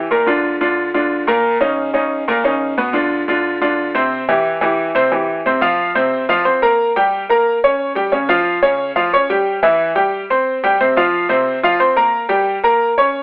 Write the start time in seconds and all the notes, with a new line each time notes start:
0.11 A#2 A#3 A#4
0.26 D3 D4 F4
0.61 D3 D4 F4
0.94 D3 D4 F4
1.27 A#2 A#3 A#4
1.60 C#3 C#4 D#4
1.93 C#3 C#4 D#4
2.28 A#2 A#3 A#4
2.44 C#3 C#4 D#4
2.78 B2 B3 B4
2.93 D3 D4 F4
3.28 D3 D4 F4
3.61 D3 D4 F4
3.95 C3 C4 C5
4.29 E3 E4 G4
4.61 E3 E4 G4
4.95 C3 C4 C5
5.12 E3 E4 G4
5.46 C3 C4 C5
5.61 F3 F4 F5
5.95 C3 C4 C5
6.29 F3 F4 F5
6.45 C4 C5 C6
6.62 A#3 A#4 A#5
6.96 G3 G4 G5
7.29 A#3 A#4 A#5
7.64 C#4 C#5 C#6
7.95 G3 G4 G5
8.12 C#3 C#4 C#5
8.29 F3 F4 F5
8.63 C#3 C#4 C#5
8.96 F3 F4 F5
9.13 C#4 C#5 C#6
9.30 G3 G4 G5
9.63 E3 E4 E5
9.95 G3 G4 G5
10.30 C4 C5 C6
10.64 G3 G4 G5
10.81 C3 C4 C5
10.96 F3 F4 F5
11.29 C3 C4 C5
11.63 F3 F4 F5
11.80 C4 C5 C6
11.96 A#3 A#4 A#5
12.29 G3 G4 G5
12.63 A#3 A#4 A#5
12.98 C#4 C#5 C#6